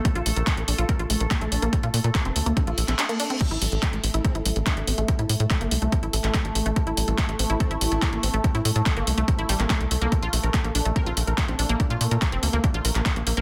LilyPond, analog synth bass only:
\new Staff \with { instrumentName = "Analog synth bass" } { \clef bass \time 4/4 \key a \phrygian \tempo 4 = 143 r16 bes,,16 bes,,16 bes,,16 r16 bes,,16 bes,,16 bes,,16 r16 bes,,16 bes,,16 bes,,16 r16 bes,,16 bes,,16 bes,,16 | r16 bes,16 bes,16 bes,16 r16 f,,16 d,16 d,16 r16 bes,,16 bes,,16 bes,,16 r4 | r16 a,,16 a,,16 a,,16 r16 a,,16 a,,16 a,,16 r16 a,,16 a,,16 a,,16 r16 a,,16 a,,16 a,,16 | r16 a,16 a,16 a,16 r16 g,,16 c,16 c,16 r16 a,,16 a,,16 a,,16 r16 a,,16 a,,16 a,,16 |
r16 a,,16 a,,16 a,,16 r16 a,,16 a,,16 a,,16 r16 a,,16 a,,16 a,,16 r16 a,,16 a,,16 a,,16 | r16 a,16 a,16 a,16 r16 g,,16 c,16 c,16 r16 a,,16 a,,16 a,,16 r16 c,16 c,16 c,16 | r16 bes,,16 bes,,16 bes,,16 r16 bes,,16 bes,,16 bes,,16 r16 bes,,16 bes,,16 bes,,16 r16 bes,,16 bes,,16 bes,,16 | r16 bes,16 bes,16 bes,16 r16 f,,16 d,16 d,16 r16 bes,,16 bes,,16 bes,,16 r16 bes,,16 bes,,16 bes,,16 | }